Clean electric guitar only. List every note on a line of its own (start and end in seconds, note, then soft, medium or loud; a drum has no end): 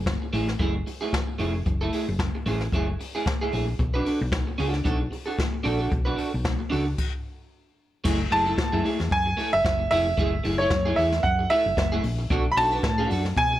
0.22 muted clean electric guitar stroke soft
0.33 0.48 A3 medium
0.33 0.48 E4 medium
0.33 0.47 G#4 medium
0.48 muted clean electric guitar stroke medium
0.59 0.75 A3 medium
0.59 0.75 E4 medium
0.59 0.73 G#4 medium
0.74 muted clean electric guitar stroke soft
0.87 muted clean electric guitar stroke soft
1.01 1.12 A3 soft
1.01 1.11 E4 medium
1.01 1.11 G#4 medium
1.27 muted clean electric guitar stroke soft
1.39 1.54 A3 medium
1.39 1.54 E4 medium
1.39 1.53 G#4 medium
1.54 muted clean electric guitar stroke soft
1.66 muted clean electric guitar stroke soft
1.81 1.92 A3 medium
1.81 1.92 E4 medium
1.81 1.94 A4 medium
1.93 2.05 A3 medium
1.93 2.05 E4 medium
1.93 2.06 G#4 medium
2.08 muted clean electric guitar stroke soft
2.35 muted clean electric guitar stroke soft
2.46 2.62 A3 medium
2.46 2.62 E4 medium
2.46 2.61 G#4 loud
2.62 muted clean electric guitar stroke soft
2.74 2.89 A3 medium
2.74 2.89 E4 medium
2.74 2.87 G#4 medium
2.89 muted clean electric guitar stroke soft
3.00 muted clean electric guitar stroke soft
3.15 3.25 A3 medium
3.15 3.24 E4 medium
3.15 3.24 G#4 medium
3.27 muted clean electric guitar stroke soft
3.41 3.51 A3 medium
3.41 3.52 E4 medium
3.41 3.53 G#4 medium
3.52 3.65 A3 medium
3.52 3.65 E4 medium
3.52 3.66 G#4 medium
3.68 muted clean electric guitar stroke soft
3.79 muted clean electric guitar stroke soft
3.94 4.04 D4 medium
3.94 4.05 F#4 medium
3.94 4.06 B4 medium
4.05 4.18 D4 medium
4.05 4.18 F#4 medium
4.05 4.19 A4 medium
4.21 muted clean electric guitar stroke soft
4.47 muted clean electric guitar stroke soft
4.58 4.79 D4 medium
4.58 4.73 F#4 medium
4.58 4.72 A4 medium
4.73 muted clean electric guitar stroke soft
4.84 5.00 D4 medium
4.84 5.00 F#4 medium
4.84 4.98 A4 medium
4.99 muted clean electric guitar stroke soft
5.11 muted clean electric guitar stroke soft
5.26 5.37 D4 soft
5.26 5.37 F#4 medium
5.26 5.36 A4 medium
5.38 muted clean electric guitar stroke soft
5.53 muted clean electric guitar stroke soft
5.64 5.79 D4 medium
5.64 5.78 F#4 medium
5.64 5.78 A4 medium
5.79 5.89 D4 medium
5.79 5.90 F#4 medium
5.79 5.89 A4 medium
5.91 muted clean electric guitar stroke soft
6.05 6.15 D4 medium
6.05 6.16 F#4 medium
6.05 6.18 B4 medium
6.16 6.30 D4 medium
6.16 6.30 F#4 medium
6.16 6.30 A4 medium
6.32 muted clean electric guitar stroke soft
6.59 muted clean electric guitar stroke soft
6.70 6.86 D4 medium
6.70 6.86 F#4 medium
6.70 6.84 A4 medium
6.85 muted clean electric guitar stroke soft
8.04 8.20 A3 medium
8.04 8.19 E4 medium
8.04 8.18 G#4 medium
8.19 muted clean electric guitar stroke soft
8.30 8.43 A3 medium
8.30 8.44 E4 medium
8.30 8.44 G#4 medium
8.46 8.56 A3 soft
8.46 8.56 E4 medium
8.46 8.56 A4 medium
8.58 muted clean electric guitar stroke soft
8.72 8.83 A3 medium
8.72 8.84 E4 medium
8.72 8.85 G#4 medium
8.84 8.97 A3 medium
8.84 8.97 E4 medium
8.84 8.98 G#4 medium
8.99 muted clean electric guitar stroke medium
9.26 muted clean electric guitar stroke medium
9.37 9.53 A3 medium
9.37 9.52 E4 medium
9.37 9.52 A4 medium
9.52 muted clean electric guitar stroke soft
9.64 muted clean electric guitar stroke soft
9.79 muted clean electric guitar stroke soft
9.91 10.07 A3 medium
9.91 10.07 E4 loud
9.91 10.05 G#4 loud
10.07 muted clean electric guitar stroke soft
10.17 10.33 A3 medium
10.17 10.33 E4 medium
10.17 10.31 G#4 loud
10.32 muted clean electric guitar stroke soft
10.44 10.56 A3 medium
10.44 10.57 E4 medium
10.44 10.57 G#4 medium
10.59 10.70 A3 soft
10.59 10.69 E4 medium
10.59 10.69 A4 medium
10.71 muted clean electric guitar stroke medium
10.85 10.96 A3 medium
10.85 10.97 E4 medium
10.85 10.98 G#4 medium
10.97 11.10 A3 medium
10.97 11.10 E4 medium
10.97 11.11 G#4 medium
11.12 muted clean electric guitar stroke soft
11.39 muted clean electric guitar stroke medium
11.50 11.66 A3 medium
11.50 11.66 E4 medium
11.50 11.66 A4 medium
11.66 muted clean electric guitar stroke soft
11.77 muted clean electric guitar stroke soft
11.92 12.02 A3 medium
11.92 12.03 E4 medium
11.92 12.04 G#4 medium
12.04 muted clean electric guitar stroke soft
12.19 muted clean electric guitar stroke soft
12.30 12.46 D4 medium
12.30 12.45 F#4 medium
12.30 12.44 A4 loud
12.45 muted clean electric guitar stroke soft
12.57 12.69 D4 medium
12.57 12.70 F#4 medium
12.57 12.70 A4 medium
12.72 12.82 D4 medium
12.72 12.82 F#4 medium
12.72 12.82 B4 medium
12.84 muted clean electric guitar stroke soft
12.98 13.09 D4 medium
12.98 13.10 F#4 medium
12.98 13.11 A4 medium
13.10 13.22 D4 medium
13.10 13.23 F#4 medium
13.10 13.23 A4 medium
13.25 muted clean electric guitar stroke soft
13.52 muted clean electric guitar stroke soft